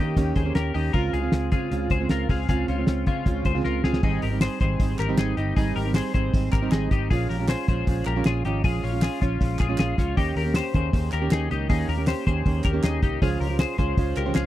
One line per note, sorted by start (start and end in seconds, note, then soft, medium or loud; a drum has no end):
0.00 0.13 D#3 loud
0.00 0.15 D#3 medium
0.00 0.16 A#3 medium
0.00 0.16 C#4 medium
0.00 0.34 D#4 medium
0.00 0.17 G4 medium
0.00 0.34 G4 medium
0.16 0.32 D#2 loud
0.16 0.46 D#3 medium
0.16 0.45 A#3 medium
0.16 0.44 C#4 loud
0.16 0.44 G4 medium
0.16 kick loud
0.16 closed hi-hat loud
0.36 0.52 D#2 loud
0.36 0.55 G#4 medium
0.36 0.55 C5 medium
0.36 kick medium
0.36 closed hi-hat medium
0.45 0.73 D#3 medium
0.45 0.74 A#3 medium
0.45 0.74 C#4 medium
0.45 0.74 G4 medium
0.55 0.71 D#2 medium
0.55 0.73 G4 medium
0.55 0.75 A#4 medium
0.55 snare loud
0.55 closed hi-hat medium
0.74 0.91 D#2 medium
0.74 0.93 D#3 medium
0.74 0.94 A#3 medium
0.74 0.95 C#4 medium
0.74 0.94 D#4 medium
0.74 0.94 G4 medium
0.74 0.95 G4 medium
0.74 open hi-hat medium
0.93 1.10 C#2 loud
0.93 1.23 C#3 medium
0.93 1.23 G#3 medium
0.93 1.22 C4 medium
0.93 1.13 F4 medium
0.93 1.21 F4 medium
0.93 1.13 A#4 loud
0.93 kick loud
0.93 closed hi-hat medium
1.13 1.29 C#2 loud
1.13 1.50 F4 medium
1.13 1.50 G#4 medium
1.13 closed hi-hat medium
1.22 1.51 G#3 medium
1.22 1.52 C4 medium
1.22 1.52 F4 medium
1.32 1.48 C#2 loud
1.32 snare loud
1.32 closed hi-hat loud
1.52 1.70 C#3 medium
1.52 1.68 C#3 medium
1.52 1.71 G#3 medium
1.52 1.71 C4 medium
1.52 1.89 F4 medium
1.52 1.72 F4 medium
1.52 1.88 G#4 medium
1.52 kick medium
1.52 closed hi-hat medium
1.71 1.87 C#2 loud
1.71 2.00 C#3 medium
1.71 2.00 G#3 medium
1.71 2.00 C4 medium
1.71 1.99 F4 medium
1.71 closed hi-hat loud
1.90 2.06 C#2 loud
1.90 2.11 G#4 medium
1.90 2.10 C5 medium
1.90 kick medium
1.90 closed hi-hat medium
2.00 2.28 C#3 medium
2.00 2.28 G#3 medium
2.00 2.29 C4 medium
2.00 2.29 F4 medium
2.09 2.26 C#2 loud
2.09 2.29 F4 medium
2.09 2.30 A#4 medium
2.09 snare loud
2.09 closed hi-hat loud
2.29 2.45 C#2 loud
2.29 2.48 C#3 medium
2.29 2.48 G#3 medium
2.29 2.49 C4 medium
2.29 2.49 F4 medium
2.29 2.48 G#4 medium
2.29 kick medium
2.29 open hi-hat medium
2.49 2.65 C#2 loud
2.49 2.78 C#3 medium
2.49 2.78 G#3 medium
2.49 2.78 C4 medium
2.49 2.67 F4 medium
2.49 2.77 F4 loud
2.49 2.68 G#4 loud
2.49 kick medium
2.49 closed hi-hat medium
2.68 2.84 C#2 loud
2.68 3.05 C#4 medium
2.68 3.04 F4 medium
2.68 closed hi-hat medium
2.78 3.06 G#3 medium
2.78 3.07 C4 medium
2.78 3.07 F4 medium
2.87 3.03 C#2 loud
2.87 snare loud
2.87 closed hi-hat loud
3.06 3.25 C#3 medium
3.06 3.23 C#3 loud
3.06 3.25 G#3 medium
3.06 3.26 C4 medium
3.06 3.44 C#4 medium
3.06 3.43 F4 medium
3.06 3.26 F4 medium
3.06 kick medium
3.06 closed hi-hat medium
3.26 3.42 C#2 loud
3.26 3.55 C#3 medium
3.26 3.55 G#3 medium
3.26 3.54 C4 medium
3.26 3.54 F4 loud
3.26 kick loud
3.26 closed hi-hat medium
3.45 3.61 C#2 loud
3.45 3.65 G#4 medium
3.45 3.64 C5 medium
3.45 kick medium
3.45 closed hi-hat medium
3.55 3.82 C#3 medium
3.55 3.83 G#3 medium
3.55 3.84 C4 medium
3.55 3.84 F4 medium
3.64 3.81 C#2 medium
3.64 3.83 F4 medium
3.64 3.84 A#4 medium
3.64 snare medium
3.83 4.00 C#2 medium
3.83 4.02 C#3 medium
3.83 4.03 G#3 medium
3.83 4.02 C4 medium
3.83 4.04 F4 medium
3.83 4.02 G#4 medium
3.83 snare medium
3.93 snare medium
4.02 4.19 G#1 loud
4.02 4.32 G#2 medium
4.02 4.32 D#3 medium
4.02 4.32 G3 medium
4.02 4.31 C4 medium
4.02 4.30 D#4 medium
4.02 4.23 D#4 medium
4.02 4.23 G#4 loud
4.02 kick loud
4.02 crash medium
4.22 4.46 G#1 loud
4.22 4.42 G4 soft
4.22 4.41 A#4 medium
4.22 hi-hat pedal medium
4.22 open hi-hat medium
4.31 4.60 G3 soft
4.31 4.60 C4 medium
4.31 4.60 D#4 medium
4.41 4.60 G#4 medium
4.41 4.60 C5 medium
4.41 snare loud
4.41 clap medium
4.41 hi-hat pedal medium
4.41 open hi-hat loud
4.60 4.76 G#1 medium
4.60 4.78 D#3 medium
4.60 4.79 G3 medium
4.60 4.80 C4 medium
4.60 4.81 D#4 medium
4.60 4.97 G#4 medium
4.60 4.97 C5 medium
4.60 kick loud
4.60 hi-hat pedal medium
4.60 open hi-hat medium
4.79 4.96 G#1 loud
4.79 5.09 D#3 medium
4.79 5.08 G3 medium
4.79 5.08 C4 medium
4.79 5.07 D#4 medium
4.79 kick loud
4.79 hi-hat pedal medium
4.79 open hi-hat medium
4.98 5.15 G#1 loud
4.98 5.18 G4 medium
4.98 5.19 A#4 medium
4.98 clap medium
4.98 hi-hat pedal medium
4.98 open hi-hat medium
5.08 5.38 G#2 medium
5.08 5.36 D#3 medium
5.08 5.37 G3 medium
5.08 5.38 C4 medium
5.08 5.38 D#4 medium
5.17 5.34 G#1 loud
5.17 5.37 D#4 medium
5.17 5.37 G#4 medium
5.17 snare loud
5.17 clap medium
5.17 hi-hat pedal medium
5.17 open hi-hat loud
5.37 5.53 G1 medium
5.37 5.56 D#3 medium
5.37 5.56 G3 medium
5.37 5.57 C4 medium
5.37 5.56 D#4 medium
5.37 5.57 D#4 medium
5.37 5.56 G4 medium
5.37 hi-hat pedal medium
5.37 open hi-hat medium
5.56 5.73 G#1 loud
5.56 5.86 G#2 medium
5.56 5.86 D#3 medium
5.56 5.86 G3 medium
5.56 5.85 C4 medium
5.56 5.76 D#4 medium
5.56 5.84 D#4 medium
5.56 5.76 G#4 loud
5.56 kick loud
5.56 hi-hat pedal medium
5.56 open hi-hat medium
5.76 6.00 G#1 medium
5.76 5.95 G4 medium
5.76 5.95 A#4 medium
5.76 hi-hat pedal medium
5.76 open hi-hat medium
5.85 6.14 G3 medium
5.85 6.14 C4 medium
5.85 6.14 D#4 medium
5.94 6.14 G#4 medium
5.94 6.13 C5 medium
5.94 snare loud
5.94 clap medium
5.94 hi-hat pedal medium
5.94 open hi-hat loud
6.14 6.30 G#1 medium
6.14 6.32 D#3 medium
6.14 6.33 G3 medium
6.14 6.34 C4 medium
6.14 6.35 D#4 medium
6.14 6.51 G#4 medium
6.14 6.51 C5 medium
6.14 kick medium
6.14 hi-hat pedal medium
6.14 open hi-hat medium
6.34 6.50 G#1 loud
6.34 6.62 D#3 medium
6.34 6.62 G3 medium
6.34 6.61 C4 medium
6.34 6.61 D#4 medium
6.34 kick loud
6.34 hi-hat pedal medium
6.34 open hi-hat loud
6.52 6.69 G#1 medium
6.52 6.72 G4 medium
6.52 6.72 A#4 medium
6.52 kick medium
6.52 clap medium
6.52 hi-hat pedal medium
6.52 open hi-hat medium
6.62 6.92 G#2 medium
6.62 6.90 D#3 medium
6.62 6.91 G3 medium
6.62 6.91 C4 medium
6.62 6.91 D#4 medium
6.72 6.88 G#1 loud
6.72 6.91 D#4 medium
6.72 6.91 G#4 medium
6.72 snare loud
6.72 clap medium
6.72 hi-hat pedal medium
6.72 open hi-hat loud
6.91 7.07 G#1 medium
6.91 7.10 D#3 medium
6.91 7.11 G3 medium
6.91 7.11 C4 medium
6.91 7.11 D#4 medium
6.91 7.12 D#4 medium
6.91 7.10 G4 medium
6.91 kick medium
6.91 hi-hat pedal medium
6.91 open hi-hat medium
7.10 7.26 A#1 loud
7.10 7.39 A#2 medium
7.10 7.40 F3 medium
7.10 7.40 G#3 medium
7.10 7.39 C#4 medium
7.10 7.30 F4 medium
7.10 7.38 F4 medium
7.10 7.30 G#4 loud
7.10 kick loud
7.10 hi-hat pedal medium
7.10 open hi-hat medium
7.29 7.54 A#1 loud
7.29 7.49 G4 medium
7.29 7.49 A#4 medium
7.29 hi-hat pedal medium
7.29 open hi-hat medium
7.39 7.68 G#3 medium
7.39 7.68 C#4 medium
7.39 7.68 F4 medium
7.48 7.68 G#4 medium
7.48 7.67 C5 medium
7.48 snare loud
7.48 clap medium
7.48 hi-hat pedal medium
7.48 open hi-hat loud
7.68 7.84 A#1 medium
7.68 7.86 F3 medium
7.68 7.87 G#3 medium
7.68 7.87 C#4 medium
7.68 7.88 F4 medium
7.68 8.05 G#4 medium
7.68 8.04 C5 medium
7.68 kick medium
7.68 hi-hat pedal medium
7.68 open hi-hat medium
7.87 8.03 A#1 loud
7.87 8.16 F3 medium
7.87 8.16 G#3 medium
7.87 8.15 C#4 medium
7.87 8.15 F4 medium
7.87 kick loud
7.87 hi-hat pedal medium
7.87 open hi-hat loud
8.05 8.22 A#1 loud
8.05 8.26 G4 medium
8.05 8.26 A#4 medium
8.05 clap medium
8.05 hi-hat pedal medium
8.05 open hi-hat medium
8.16 8.46 A#2 medium
8.16 8.44 F3 medium
8.16 8.45 G#3 medium
8.16 8.45 C#4 medium
8.16 8.45 F4 medium
8.25 8.41 A#1 medium
8.25 8.45 F4 medium
8.25 8.45 G#4 medium
8.25 snare loud
8.25 clap medium
8.25 hi-hat pedal medium
8.25 open hi-hat loud
8.45 8.60 G#1 medium
8.45 8.63 F3 medium
8.45 8.63 G#3 medium
8.45 8.64 C#4 medium
8.45 8.65 D#4 medium
8.45 8.64 F4 medium
8.45 8.64 G4 medium
8.45 hi-hat pedal medium
8.45 open hi-hat medium
8.64 8.80 A#1 loud
8.64 8.92 A#2 medium
8.64 8.93 F3 medium
8.64 8.93 G#3 medium
8.64 8.92 C#4 medium
8.64 8.91 F4 medium
8.64 8.82 F4 medium
8.64 8.83 G#4 loud
8.64 kick loud
8.64 hi-hat pedal medium
8.64 open hi-hat medium
8.83 9.07 A#1 loud
8.83 9.03 C#4 medium
8.83 9.02 F4 medium
8.83 hi-hat pedal medium
8.83 open hi-hat medium
8.92 9.20 G#3 soft
8.92 9.21 C#4 medium
8.92 9.21 F4 medium
9.02 9.20 F4 medium
9.02 9.21 G#4 medium
9.02 snare loud
9.02 clap medium
9.02 hi-hat pedal medium
9.02 open hi-hat loud
9.21 9.37 A#1 loud
9.21 9.39 F3 medium
9.21 9.40 G#3 medium
9.21 9.58 C#4 medium
9.21 9.40 C#4 medium
9.21 9.57 F4 medium
9.21 9.41 F4 medium
9.21 kick medium
9.21 hi-hat pedal medium
9.21 open hi-hat medium
9.40 9.56 A#1 loud
9.40 9.69 F3 medium
9.40 9.68 G#3 medium
9.40 9.68 C#4 medium
9.40 9.68 F4 medium
9.40 kick medium
9.40 hi-hat pedal medium
9.40 open hi-hat medium
9.59 9.75 A#1 medium
9.59 9.79 F4 medium
9.59 9.78 G#4 medium
9.59 kick medium
9.59 clap medium
9.59 hi-hat pedal medium
9.59 open hi-hat medium
9.69 9.98 A#2 medium
9.69 9.96 F3 medium
9.69 9.96 G#3 medium
9.69 9.97 C#4 medium
9.69 9.98 F4 medium
9.78 9.94 A#1 medium
9.78 9.97 F4 medium
9.78 9.98 G#4 medium
9.78 snare loud
9.78 clap medium
9.78 hi-hat pedal medium
9.78 open hi-hat loud
9.97 10.13 C#2 medium
9.97 10.16 F3 medium
9.97 10.16 G#3 medium
9.97 10.16 C#4 medium
9.97 10.17 C#4 medium
9.97 10.17 F4 medium
9.97 kick medium
9.97 hi-hat pedal medium
9.97 open hi-hat medium
10.16 10.33 D#2 loud
10.16 10.45 D#3 medium
10.16 10.45 A#3 medium
10.16 10.45 C#4 medium
10.16 10.37 D#4 medium
10.16 10.36 G4 medium
10.16 10.44 G4 medium
10.16 kick loud
10.16 hi-hat pedal medium
10.16 open hi-hat medium
10.36 10.59 D#2 loud
10.36 10.55 G4 soft
10.36 10.55 A#4 medium
10.36 hi-hat pedal medium
10.36 open hi-hat medium
10.45 10.73 A#3 soft
10.45 10.73 C#4 medium
10.45 10.74 G4 medium
10.54 10.75 G4 medium
10.54 10.74 C5 medium
10.54 snare loud
10.54 clap medium
10.54 hi-hat pedal medium
10.54 open hi-hat loud
10.73 10.90 D#2 loud
10.73 10.91 D#3 medium
10.73 10.92 A#3 medium
10.73 10.92 C#4 medium
10.73 10.93 G4 medium
10.73 11.11 G#4 medium
10.73 11.11 C5 medium
10.73 kick medium
10.73 hi-hat pedal medium
10.73 open hi-hat medium
10.92 11.09 D#2 loud
10.92 11.21 D#3 medium
10.92 11.21 A#3 medium
10.92 11.21 C#4 medium
10.92 11.20 G4 medium
10.92 kick loud
10.92 hi-hat pedal medium
10.92 open hi-hat loud
11.12 11.28 D#2 loud
11.12 11.32 G4 medium
11.12 11.32 A#4 medium
11.12 clap medium
11.12 hi-hat pedal medium
11.12 open hi-hat medium
11.22 11.48 D#3 medium
11.22 11.49 A#3 medium
11.22 11.50 C#4 medium
11.22 11.50 G4 medium
11.31 11.47 D#2 loud
11.31 11.51 D#4 medium
11.31 11.51 G#4 medium
11.31 snare loud
11.31 clap medium
11.31 hi-hat pedal medium
11.31 open hi-hat loud
11.49 11.70 C#2 medium
11.49 11.67 D#3 medium
11.49 11.68 A#3 medium
11.49 11.68 C#4 medium
11.49 11.69 D#4 medium
11.49 11.69 G4 medium
11.49 hi-hat pedal medium
11.49 open hi-hat medium
11.69 11.85 D#2 loud
11.69 11.98 D#3 medium
11.69 11.98 A#3 medium
11.69 11.97 C#4 medium
11.69 11.89 D#4 medium
11.69 11.96 G4 loud
11.69 11.89 G#4 loud
11.69 kick loud
11.69 hi-hat pedal medium
11.69 open hi-hat medium
11.88 12.12 D#2 loud
11.88 12.07 G4 medium
11.88 12.07 A#4 medium
11.88 hi-hat pedal medium
11.88 open hi-hat medium
11.97 12.26 A#3 soft
11.97 12.27 C#4 medium
11.97 12.26 G4 medium
12.07 12.27 G4 medium
12.07 12.26 C5 medium
12.07 snare loud
12.07 clap medium
12.07 hi-hat pedal medium
12.07 open hi-hat loud
12.26 12.42 D#2 loud
12.26 12.44 D#3 medium
12.26 12.45 A#3 medium
12.26 12.45 C#4 medium
12.26 12.46 G4 medium
12.26 12.63 G#4 medium
12.26 12.63 C5 medium
12.26 kick medium
12.26 hi-hat pedal medium
12.26 open hi-hat medium
12.45 12.61 D#2 medium
12.45 12.73 D#3 medium
12.45 12.73 A#3 medium
12.45 12.72 C#4 medium
12.45 12.72 G4 medium
12.45 kick loud
12.45 hi-hat pedal medium
12.45 open hi-hat loud
12.64 12.80 D#2 medium
12.64 12.84 G4 medium
12.64 12.84 A#4 medium
12.64 kick medium
12.64 clap medium
12.64 hi-hat pedal medium
12.64 open hi-hat medium
12.73 13.01 D#3 medium
12.73 13.01 A#3 medium
12.73 13.02 C#4 medium
12.73 13.02 G4 medium
12.83 13.03 D#2 medium
12.83 13.02 D#4 medium
12.83 13.02 G#4 medium
12.83 snare loud
12.83 clap medium
12.83 hi-hat pedal medium
12.83 open hi-hat loud
13.02 13.18 C2 medium
13.02 13.21 D#3 medium
13.02 13.21 A#3 medium
13.02 13.21 C#4 medium
13.02 13.22 D#4 medium
13.02 13.22 G4 medium
13.02 kick medium
13.02 hi-hat pedal medium
13.02 open hi-hat medium
13.21 13.37 C#2 loud
13.21 13.50 C#3 medium
13.21 13.50 F3 medium
13.21 13.50 G#3 medium
13.21 13.49 C#4 medium
13.21 13.49 F4 loud
13.21 13.41 F4 medium
13.21 13.41 G#4 loud
13.21 13.48 C5 medium
13.21 kick loud
13.21 hi-hat pedal medium
13.21 open hi-hat medium
13.40 13.64 C#2 loud
13.40 13.60 G4 medium
13.40 13.59 A#4 medium
13.40 hi-hat pedal medium
13.40 open hi-hat medium
13.49 13.77 G#3 soft
13.49 13.77 C#4 medium
13.49 13.78 F4 medium
13.49 13.78 C5 medium
13.59 13.78 G#4 medium
13.59 13.77 C5 medium
13.59 snare loud
13.59 clap medium
13.59 hi-hat pedal medium
13.59 open hi-hat loud
13.78 13.94 C#2 loud
13.78 13.96 G#3 medium
13.78 13.97 C#4 medium
13.78 13.98 F4 medium
13.78 14.15 G#4 medium
13.78 14.14 C5 medium
13.78 13.98 C5 medium
13.78 kick medium
13.78 hi-hat pedal medium
13.78 open hi-hat medium
13.97 14.13 C#2 loud
13.97 14.25 G#3 medium
13.97 14.25 C#4 medium
13.97 14.25 F4 medium
13.97 14.25 C5 medium
13.97 kick loud
13.97 hi-hat pedal medium
13.97 open hi-hat loud
14.16 14.32 C#2 loud
14.16 14.35 G4 medium
14.16 14.36 A#4 medium
14.16 clap medium
14.16 hi-hat pedal medium
14.16 open hi-hat medium
14.26 14.46 C#3 medium
14.26 14.46 F3 medium
14.26 14.46 G#3 medium
14.26 14.46 C#4 medium
14.26 14.46 F4 medium
14.26 14.46 C5 medium
14.35 14.46 C#2 loud
14.35 14.46 F4 medium
14.35 14.46 G#4 medium
14.35 snare loud
14.35 clap medium
14.35 hi-hat pedal medium
14.35 open hi-hat loud